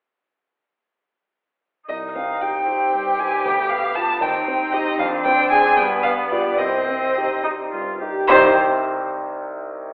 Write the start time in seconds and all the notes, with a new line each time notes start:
1.88 C2 D#4 D#5
2.16 C4 F5
2.42 D#4 G4 G5
2.67 C4 D#4 G4
2.94 G2
3.19 D#4 G4 G#5
3.45 D2 B3 G5
3.70 B3 F5
3.95 F4 B4 A5
4.21 D#2 C4 D#4 G5
4.48 C4
4.73 D#4 G4 D#5
4.99 F2 C4 D4 F5
5.24 C4 G5
5.51 D4 G#4 G#5
5.77 G2 B3 G5
6.03 B3 F5
6.29 F4 G4 D5
6.58 C2 C4 D#5
6.88 C4
7.17 D#4 G4
7.43 D#4 G4
7.71 G2 F4
8.00 D#4 G4
8.28 C2 C3 D#3 C4 D#4 G4 C5 D#5